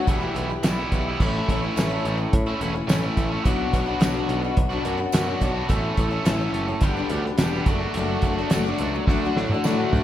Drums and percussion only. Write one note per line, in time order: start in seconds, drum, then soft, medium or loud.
0.08 kick loud
0.08 closed hi-hat loud
0.36 closed hi-hat medium
0.63 snare loud
0.63 closed hi-hat loud
0.63 tambourine medium
0.92 kick medium
0.92 closed hi-hat medium
1.20 kick loud
1.20 crash medium
1.49 kick medium
1.49 closed hi-hat medium
1.77 snare loud
1.77 closed hi-hat loud
1.77 tambourine medium
2.05 closed hi-hat medium
2.33 kick loud
2.33 closed hi-hat loud
2.61 closed hi-hat medium
2.89 snare loud
2.89 closed hi-hat loud
2.89 tambourine loud
3.17 kick medium
3.17 closed hi-hat medium
3.45 kick loud
3.45 closed hi-hat medium
3.73 kick medium
3.73 closed hi-hat medium
4.01 snare loud
4.01 closed hi-hat loud
4.01 tambourine medium
4.29 closed hi-hat medium
4.57 kick loud
4.57 closed hi-hat loud
4.85 closed hi-hat medium
5.12 snare loud
5.12 closed hi-hat loud
5.12 tambourine medium
5.41 kick medium
5.41 closed hi-hat medium
5.70 kick loud
5.70 closed hi-hat medium
5.97 kick medium
5.97 closed hi-hat medium
6.26 snare loud
6.26 closed hi-hat loud
6.26 tambourine medium
6.54 closed hi-hat medium
6.81 kick loud
6.81 closed hi-hat loud
7.10 closed hi-hat medium
7.25 snare soft
7.38 snare loud
7.38 closed hi-hat loud
7.38 tambourine medium
7.66 kick loud
7.66 closed hi-hat medium
7.94 closed hi-hat medium
8.22 kick medium
8.22 closed hi-hat medium
8.50 snare loud
8.50 closed hi-hat loud
8.50 tambourine medium
8.78 closed hi-hat medium
9.07 kick loud
9.07 snare medium
9.37 snare medium
9.49 mid tom medium
9.64 snare medium
9.64 tambourine medium
9.93 floor tom loud